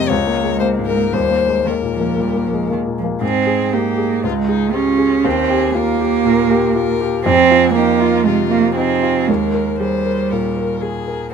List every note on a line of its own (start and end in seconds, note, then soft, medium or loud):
0.00 0.12 F2 medium
0.00 0.12 C3 soft
0.00 0.12 A#3 soft
0.00 0.13 C4 soft
0.00 0.11 D#5 medium
0.09 1.10 C#2 medium
0.09 1.10 G#3 medium
0.09 0.59 C#5 medium
0.27 0.54 A#3 soft
0.44 0.61 G#3 soft
0.60 0.89 A#3 soft
0.60 0.68 C5 medium
0.79 1.06 G#2 soft
0.85 1.14 A#4 medium
0.96 1.13 A#3 soft
1.13 2.15 D#2 soft
1.13 1.64 G3 soft
1.13 1.68 C5 medium
1.30 1.58 A#3 soft
1.48 1.65 G#3 soft
1.65 1.73 D#3 soft
1.65 1.93 A#3 soft
1.65 2.71 A#4 soft
1.82 2.10 A#2 soft
1.94 2.21 F3 soft
2.00 2.28 A#3 soft
2.17 2.45 A#2 soft
2.17 2.47 G3 soft
2.36 2.63 A#3 soft
2.46 2.71 F3 soft
2.53 2.70 G#3 soft
2.70 2.80 D#3 soft
2.70 2.97 A#3 soft
2.87 3.15 A#2 soft
2.99 3.07 F3 soft
3.04 3.22 A#3 soft
3.21 4.20 G#2 soft
3.21 3.75 C4 medium
3.21 3.75 G#4 soft
3.46 3.88 G#4 soft
3.72 4.26 A#3 medium
3.72 3.98 G4 soft
3.72 4.24 G4 soft
3.97 4.23 G#4 soft
4.24 5.22 C#2 soft
4.24 4.75 G#3 medium
4.24 4.32 F4 soft
4.48 4.74 D#4 soft
4.48 4.89 G#4 soft
4.74 5.26 C#4 medium
4.74 5.27 F4 soft
4.74 5.00 G4 soft
4.98 5.24 G#4 soft
5.24 6.22 D#2 medium
5.24 5.76 C4 medium
5.24 5.53 G4 soft
5.50 5.90 G4 soft
5.50 5.78 G#4 medium
5.74 7.01 A#3 medium
5.74 6.00 F4 soft
5.74 6.75 A#4 soft
6.00 6.41 G4 soft
6.25 6.65 A#2 medium
6.51 6.91 G4 medium
6.75 7.01 F4 soft
6.75 7.24 A#4 medium
7.01 7.26 G4 soft
7.24 8.23 F2 medium
7.24 7.71 C4 medium
7.24 7.77 G#4 medium
7.51 7.91 F4 soft
7.74 8.26 A#3 medium
7.74 8.01 D#4 soft
7.74 8.01 G4 soft
8.00 8.25 F4 medium
8.00 8.42 F4 soft
8.24 8.66 C3 soft
8.24 8.49 G#3 medium
8.24 8.74 F4 soft
8.50 8.75 A#3 medium
8.50 8.92 F4 soft
8.75 9.29 C4 medium
8.75 9.03 D#4 soft
8.75 9.30 G#4 soft
9.03 9.29 F4 soft
9.27 10.28 D#2 soft
9.27 9.81 G#3 medium
9.27 9.75 A#4 soft
9.54 9.95 A#4 soft
9.79 10.82 G3 soft
9.79 10.06 G#4 soft
9.79 10.32 C5 medium
10.06 10.47 A#4 soft
10.30 10.72 A#2 soft
10.30 10.83 A#4 soft
10.57 10.98 A#4 soft
10.82 11.08 G#4 soft
10.82 11.33 G#4 soft
11.08 11.34 A#4 soft